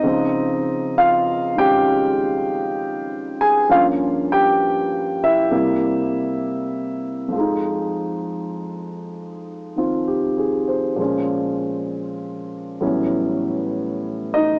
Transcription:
Already playing: D#4 D#5
0.04 C#2 C#3 F3 C4
0.98 F4 F5
1.55 D#3 G#3 C#4 G4 G5
3.41 G#4 G#5
3.69 G2 F3 A#3 C#4 F4 F5
4.32 G4 G5
5.24 E4 E5
5.51 C3 G3 A#3 E4
7.28 F2
7.32 F3 G#3
7.39 D#4
9.76 D#3 C4 F4
10.07 G4
10.38 G#4
10.68 C5
10.96 A#2 F3 G#3
11.01 C#4
12.81 A2 E3 F#3 G3 B3 C#4
14.34 D#4 D#5

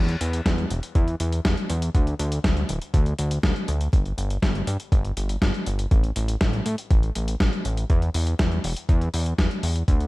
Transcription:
Already playing: E2
0.08 closed hi-hat
0.21 E2, closed hi-hat
0.33 closed hi-hat
0.46 E2, kick, snare, closed hi-hat
0.58 closed hi-hat
0.70 E1, closed hi-hat
0.83 closed hi-hat
0.95 E2, kick, closed hi-hat
1.08 closed hi-hat
1.20 E2, closed hi-hat
1.32 closed hi-hat
1.45 E2, kick, snare, closed hi-hat
1.57 closed hi-hat
1.70 E2, closed hi-hat
1.82 closed hi-hat
1.95 D2, kick, closed hi-hat
2.07 closed hi-hat
2.19 D2, closed hi-hat
2.32 closed hi-hat
2.44 D2, kick, snare, closed hi-hat
2.57 closed hi-hat
2.69 D1, closed hi-hat
2.82 closed hi-hat
2.94 D2, kick, closed hi-hat
3.06 closed hi-hat
3.19 D2, closed hi-hat
3.31 closed hi-hat
3.43 D2, kick, snare, closed hi-hat
3.56 closed hi-hat
3.68 D2, closed hi-hat
3.81 closed hi-hat
3.93 G1, kick, closed hi-hat
4.06 closed hi-hat
4.18 G1, closed hi-hat
4.30 closed hi-hat
4.42 G1, kick, snare, closed hi-hat
4.55 closed hi-hat
4.67 G2, closed hi-hat
4.80 closed hi-hat
4.92 G1, kick, closed hi-hat
5.05 closed hi-hat
5.17 G1, closed hi-hat
5.29 closed hi-hat
5.42 G1, kick, snare, closed hi-hat
5.54 closed hi-hat
5.66 G1, closed hi-hat
5.79 closed hi-hat
5.91 A1, kick, closed hi-hat
6.04 closed hi-hat
6.16 A1, closed hi-hat
6.28 closed hi-hat
6.41 A1, kick, snare, closed hi-hat
6.53 closed hi-hat
6.66 A2, closed hi-hat
6.78 closed hi-hat
6.91 A1, kick, closed hi-hat
7.03 closed hi-hat
7.15 A1, closed hi-hat
7.28 closed hi-hat
7.40 A1, kick, snare, closed hi-hat
7.53 closed hi-hat
7.65 A1, closed hi-hat
7.77 closed hi-hat
7.90 E2, kick, closed hi-hat
8.02 closed hi-hat
8.14 E2, open hi-hat
8.27 closed hi-hat
8.39 E2, kick, snare, closed hi-hat
8.52 closed hi-hat
8.64 E1, open hi-hat
8.76 closed hi-hat
8.89 E2, kick, closed hi-hat
9.01 closed hi-hat
9.14 E2, open hi-hat
9.26 closed hi-hat
9.38 E2, kick, snare, closed hi-hat
9.51 closed hi-hat
9.63 E2, open hi-hat
9.76 closed hi-hat
9.88 D2, kick, closed hi-hat
10.00 closed hi-hat

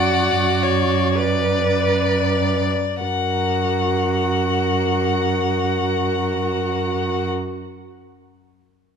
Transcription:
Already playing: F#2 F#4 D5 F#5
0.62 C#5
1.17 B4 D5
3.01 F#2 F#4 A#4 F#5

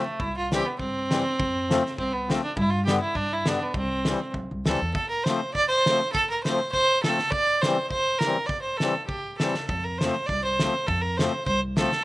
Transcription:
Already playing: A3
0.20 C2 E4, kick
0.37 F4
0.51 E3 G3 C4 G4, snare
0.66 B3
0.79 G2 C4, kick
1.11 E3 G3 C4, snare
1.40 F2, kick
1.69 F3 A3 C4, snare
1.86 snare
1.98 C2 C4, kick
2.13 B3
2.28 F3 A3 C4, snare
2.43 D4
2.57 G2 E4, kick
2.70 F4
2.85 D3 G3 B3 G4, snare
3.00 E4
3.15 G2 D4, kick
3.33 E4
3.46 D3 G3 B3 D4, snare
3.63 B3
3.74 C2 C4, kick
4.05 E3 G3 C4, snare
4.34 B1, kick
4.51 C2
4.66 D2 E3 G3 C4 A4, snare
4.82 E2
4.94 A4, kick
5.09 A#4
5.24 F3 A3 C5, snare
5.29 C4
5.54 D5, kick
5.68 C5
5.86 F3 A3 C4, snare
6.12 A4, kick
6.30 A#4
6.43 F3 C5, snare
6.47 A3 C4
6.72 C5, kick
7.03 F3 A4, snare
7.07 A3 C4
7.18 snare
7.31 D5, kick
7.62 E3 C5, snare
7.66 G3 C4
7.90 C5, kick
8.18 A#4, snare
8.25 E3 G3 C4
8.46 D5, kick
8.62 C5
8.77 E3 A4, snare
8.82 G3 C4
9.06 G4, kick
9.38 E3 A4, snare
9.42 G3 C4
9.54 snare
9.67 F2 A4, kick
9.84 A#4
9.98 C5, snare
10.03 F3 A3 C4
10.26 C2 D5, kick
10.44 C5
10.59 F3 A3 C4, snare
10.87 F2 A4, kick
11.01 A#4
11.17 F3 A3 C5, snare
11.21 C4
11.46 C2 C5, kick
11.77 F3 A3 C4 A4, snare
11.92 snare

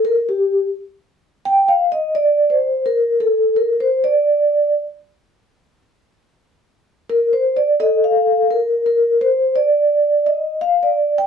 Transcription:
0.05 A#4
0.29 G4
1.45 G5
1.69 F5
1.92 D#5
2.15 D5
2.50 C5
2.86 A#4
3.20 A4
3.56 A#4
3.80 C5
4.04 D5
7.09 A#4
7.33 C5
7.57 D5
7.80 A4 D#5
8.04 F5
8.51 A#4
8.86 A#4
9.21 C5
9.56 D5
10.26 D#5
10.61 F5
10.83 D5
11.18 G5

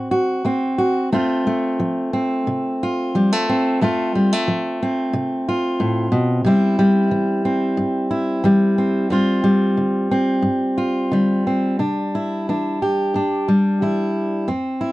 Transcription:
Already playing: A2 C4
0.11 F#4
0.45 A3 C4
0.78 F#4
1.12 F2 A3 C4 F4
1.47 A3
1.80 F3
2.13 C4
2.47 C3
2.83 F4
3.15 F3 G3
3.32 A3
3.49 C4
3.81 F2 A3 C4 F4
4.15 G3
4.33 A3
4.48 F3
4.83 C4
5.13 C3
5.49 F4
5.80 A2
6.12 B2
6.45 C3 G3 C4 E4
6.79 G3
7.11 E3
7.45 C4
7.77 G2
8.11 E4
8.44 E3 G3
8.78 C4
9.10 G2 G3 C4 F4
9.44 G3
9.77 D3
10.11 C4
10.42 G2
10.78 F4
11.11 D3 G3
11.47 C4
11.79 C3 D4
12.15 E4
12.49 E3 D4
12.82 G4
13.14 G2 D4
13.48 G3
13.82 E3 E4
14.48 F2 C4
14.81 E4

